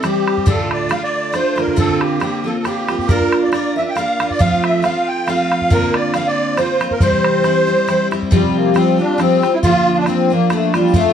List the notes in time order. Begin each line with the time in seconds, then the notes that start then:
0.03 E3 G3 C4 E4 G4, bodhran
0.28 bodhran
0.38 bodhran
0.46 D2 A2 D3 A3 D4 F4 A4, bodhran
0.59 bodhran
0.71 D5, bodhran
0.89 D3 A3 D4 F4 F5, bodhran
1.03 D5
1.33 D3 A3 D4 F4 C5, bodhran
1.56 D3 A3 D4 F4 A#4, bodhran
1.68 bodhran
1.76 A#2 D3 A#3 C4 F4 A4, bodhran
1.89 bodhran
2.01 G4, bodhran
2.20 D3 A#3 C4 F4 G4, bodhran
2.44 A#3 C4 F4 A4
2.59 A4
2.64 D3 A#3 C4 F4 G4, bodhran
2.88 A#3 C4 F4, bodhran
2.99 bodhran
3.08 A#3 D4 F4 A#4, bodhran
3.21 bodhran
3.32 bodhran
3.42 D5
3.52 A#3 D4 F4 A#4 D5, bodhran
3.76 D4 F4 A#4 E5
3.90 G5
3.95 A#3 D4 F4 A#4 F5, bodhran
4.20 D4 F4 A#4, bodhran
4.30 D5, bodhran
4.39 F3 A3 C4 F4 F5, bodhran
4.53 bodhran
4.64 E5, bodhran
4.82 F3 A3 C4 F4 F5, bodhran
5.08 G5
5.27 F3 A3 C4 F4 F5, bodhran
5.52 bodhran
5.61 bodhran
5.70 A#2 D3 A#3 C4 F4 A#4, bodhran
5.83 bodhran
5.94 D5, bodhran
6.14 D3 A#3 C4 F4 F5, bodhran
6.27 D5
6.57 D3 A#3 C4 F4 C5, bodhran
6.81 A#3 C4 F4, bodhran
6.91 A#4, bodhran
7.00 C3 E3 G3 C4 E4 C5, bodhran
7.13 bodhran
7.24 bodhran
7.44 E3 G3 C4 E4, bodhran
7.67 G3 C4 E4
7.88 E3 G3 C4 E4, bodhran
8.11 G3 C4 E4, bodhran
8.22 bodhran
8.31 C3 F3 G3 C4 F4, bodhran
8.56 A#3
8.74 F3 G3 C4 F4, bodhran
8.98 G3 C4 D4 F4
9.18 F3 G3 C4 F4, bodhran
9.42 G3 C4 F4, bodhran
9.54 E4
9.63 D2 D3 F3 A#3 D4 F4, bodhran
9.97 D4
10.06 F3 A#3 C4 D4 F4, bodhran
10.30 F3 A#3 D4 F4
10.50 F3 A3 A#3 D4 F4, bodhran
10.74 F3 G3 A#3 D4 F4, bodhran
10.94 F3 A3 C4 F4, bodhran